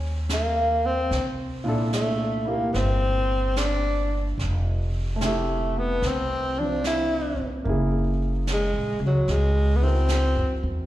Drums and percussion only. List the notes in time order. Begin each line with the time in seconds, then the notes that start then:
0.29 snare, hi-hat pedal
1.11 brush sweep, snare
1.93 snare, hi-hat pedal
2.74 brush sweep, snare
3.56 snare, hi-hat pedal
4.39 brush sweep, snare
5.21 snare, hi-hat pedal
6.02 brush sweep, snare
6.84 snare, hi-hat pedal
7.66 brush sweep
8.47 snare, hi-hat pedal
9.28 brush sweep, snare
10.09 snare, hi-hat pedal